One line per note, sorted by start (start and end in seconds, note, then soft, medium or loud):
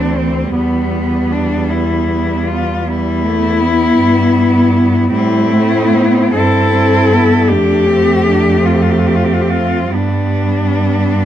0.00 0.52 D2 soft
0.00 0.51 E3 soft
0.00 0.50 C4 soft
0.00 0.19 D4 soft
0.17 0.55 C4 soft
0.54 3.94 E2 soft
0.54 2.83 G3 soft
0.54 1.34 B3 soft
0.54 2.83 B3 soft
1.32 1.72 D4 medium
1.70 2.50 E4 soft
2.49 2.88 F4 medium
2.86 3.26 G3 soft
2.86 5.08 B3 soft
2.86 5.11 E4 medium
3.25 3.63 A3 soft
3.61 5.12 B3 soft
3.99 5.10 G2 soft
5.12 6.33 A2 soft
5.12 5.55 G3 soft
5.12 6.39 C4 soft
5.12 6.33 E4 medium
5.54 5.97 A3 soft
5.95 6.35 B3 soft
6.35 7.52 G2 soft
6.35 6.72 C4 soft
6.35 7.51 E4 soft
6.35 7.50 A4 medium
6.73 7.14 C4 soft
7.13 7.52 B3 soft
7.48 9.93 F2 soft
7.48 9.93 A3 soft
7.48 7.90 D4 soft
7.48 8.67 G4 medium
7.89 8.29 C4 soft
8.27 8.65 D4 soft
8.65 9.95 C4 soft
8.65 8.75 F4 soft
8.74 8.83 G4 soft
8.81 8.92 F4 soft
8.90 9.00 G4 soft
8.98 9.08 F4 soft
9.07 9.17 G4 soft
9.15 9.25 F4 soft
9.24 9.34 G4 soft
9.33 9.43 F4 soft
9.41 9.51 G4 soft
9.50 9.96 F4 soft
9.94 11.25 G2 soft
9.94 11.25 G3 soft
9.94 11.25 B3 soft
9.94 11.25 D4 medium